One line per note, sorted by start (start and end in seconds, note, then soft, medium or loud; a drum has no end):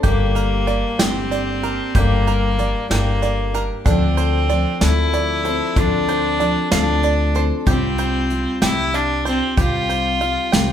0.03 0.82 G1 medium
0.03 0.67 G2 medium
0.03 0.67 D3 medium
0.03 0.66 G3 medium
0.03 1.00 A#3 medium
0.03 0.66 A#3 medium
0.03 0.68 D4 medium
0.03 1.31 G4 medium
0.03 0.68 G4 medium
0.03 kick medium
0.03 closed hi-hat medium
0.35 1.62 A#4 medium
0.35 closed hi-hat medium
0.67 0.99 G3 medium
0.67 0.99 A#3 medium
0.67 0.98 D4 medium
0.67 0.98 G4 medium
0.67 1.30 D5 medium
0.67 closed hi-hat soft
0.99 1.77 G1 medium
0.99 1.64 G2 medium
0.99 1.64 D3 soft
0.99 1.63 G3 medium
0.99 1.63 A#3 medium
0.99 1.96 C4 medium
0.99 1.63 D4 medium
0.99 1.62 G4 medium
0.99 2.26 G5 medium
0.99 snare medium
0.99 closed hi-hat medium
1.31 2.58 D5 medium
1.31 closed hi-hat medium
1.63 1.94 G3 soft
1.63 1.95 A#3 soft
1.63 1.95 D4 soft
1.63 1.95 G4 soft
1.63 2.26 A#4 medium
1.63 closed hi-hat medium
1.95 2.73 G1 medium
1.95 2.59 G2 medium
1.95 2.59 D3 medium
1.95 2.57 G3 medium
1.95 2.89 A#3 medium
1.95 2.58 A#3 medium
1.95 2.60 D4 medium
1.95 3.22 G4 medium
1.95 2.59 G4 medium
1.95 kick medium
1.95 closed hi-hat medium
2.27 3.53 A#4 medium
2.27 closed hi-hat medium
2.58 2.89 G3 soft
2.58 2.89 A#3 medium
2.58 2.89 D4 soft
2.58 2.89 G4 medium
2.58 3.21 D5 medium
2.58 closed hi-hat medium
2.90 3.68 G1 medium
2.90 3.54 G2 soft
2.90 3.54 D3 soft
2.90 3.54 G3 medium
2.90 3.58 A#3 medium
2.90 3.53 A#3 soft
2.90 3.53 D4 medium
2.90 3.52 G4 medium
2.90 3.85 G5 medium
2.90 snare medium
2.90 closed hi-hat medium
3.22 3.86 D5 medium
3.22 closed hi-hat medium
3.53 3.85 G3 soft
3.53 3.85 A#3 soft
3.53 3.85 D4 soft
3.53 3.85 G4 soft
3.53 3.86 A#4 medium
3.53 closed hi-hat medium
3.85 4.64 D2 medium
3.85 4.49 D3 medium
3.85 4.48 F3 medium
3.85 4.49 C4 medium
3.85 4.78 C4 medium
3.85 4.81 D4 medium
3.85 4.49 D4 medium
3.85 4.50 A4 medium
3.85 kick medium
3.85 closed hi-hat medium
4.17 5.44 C5 medium
4.17 closed hi-hat medium
4.49 4.81 F3 medium
4.49 4.81 C4 medium
4.49 4.80 D4 medium
4.49 4.80 A4 medium
4.49 5.12 D5 medium
4.49 closed hi-hat soft
4.81 5.59 D2 medium
4.81 5.45 D3 soft
4.81 5.76 F3 medium
4.81 5.46 C4 medium
4.81 5.44 D4 medium
4.81 5.79 E4 medium
4.81 5.42 A4 medium
4.81 6.08 A5 medium
4.81 snare loud
4.81 closed hi-hat medium
5.13 6.39 D5 medium
5.13 closed hi-hat soft
5.43 5.75 C4 soft
5.43 5.76 D4 soft
5.43 5.76 A4 soft
5.43 6.07 C5 medium
5.43 closed hi-hat medium
5.76 6.54 D2 medium
5.76 6.39 D3 medium
5.76 6.38 F3 medium
5.76 6.40 C4 medium
5.76 6.39 D4 medium
5.76 6.71 D4 medium
5.76 7.04 F4 medium
5.76 6.40 A4 medium
5.76 kick medium
5.76 closed hi-hat medium
6.08 7.34 C5 medium
6.08 closed hi-hat medium
6.39 6.71 F3 medium
6.39 6.71 C4 medium
6.39 6.70 D4 medium
6.39 6.70 A4 medium
6.39 7.03 D5 medium
6.39 closed hi-hat soft
6.71 7.50 D2 medium
6.71 7.36 D3 soft
6.71 7.66 F3 medium
6.71 7.36 C4 medium
6.71 7.34 D4 medium
6.71 7.39 D4 medium
6.71 7.33 A4 medium
6.71 7.67 F5 medium
6.71 snare loud
6.71 closed hi-hat medium
7.03 7.67 D5 medium
7.03 closed hi-hat medium
7.34 7.65 C4 soft
7.34 7.67 D4 soft
7.34 7.66 A4 soft
7.34 7.67 C5 medium
7.34 closed hi-hat medium
7.66 8.45 C2 medium
7.66 8.30 C3 medium
7.66 8.28 G3 medium
7.66 8.30 C4 medium
7.66 8.59 C4 medium
7.66 8.30 F4 medium
7.66 8.94 G4 medium
7.66 8.30 G4 medium
7.66 kick medium
7.66 closed hi-hat medium
7.98 9.24 C5 medium
7.98 closed hi-hat medium
8.29 8.61 G3 medium
8.29 8.61 C4 medium
8.29 8.62 F4 medium
8.29 8.60 G4 medium
8.29 closed hi-hat soft
8.61 9.40 C2 medium
8.61 9.26 C3 medium
8.61 9.26 G3 medium
8.61 9.27 C4 soft
8.61 8.96 E4 medium
8.61 9.24 G4 medium
8.61 9.89 G5 medium
8.61 snare medium
8.61 closed hi-hat medium
8.94 9.26 D4 medium
8.94 10.20 F5 medium
8.94 closed hi-hat medium
9.25 9.56 C4 medium
9.25 9.56 C4 soft
9.25 9.56 F4 soft
9.25 9.57 G4 soft
9.25 9.88 C5 medium
9.25 closed hi-hat medium
9.57 10.35 C2 medium
9.57 10.20 C3 medium
9.57 10.19 G3 medium
9.57 10.20 C4 medium
9.57 10.21 F4 medium
9.57 10.72 F4 medium
9.57 10.72 G4 medium
9.57 10.21 G4 medium
9.57 kick loud
9.57 closed hi-hat medium
9.89 10.72 C5 medium
9.89 closed hi-hat soft
10.20 10.52 G3 medium
10.20 10.52 C4 medium
10.20 10.51 F4 medium
10.20 10.51 G4 medium
10.20 10.72 F5 medium
10.20 closed hi-hat soft
10.52 10.72 C2 medium
10.52 10.72 C3 medium
10.52 10.72 G3 medium
10.52 10.72 C4 medium
10.52 10.72 F4 medium
10.52 10.72 G4 medium
10.52 10.72 G5 medium
10.52 snare medium
10.52 closed hi-hat medium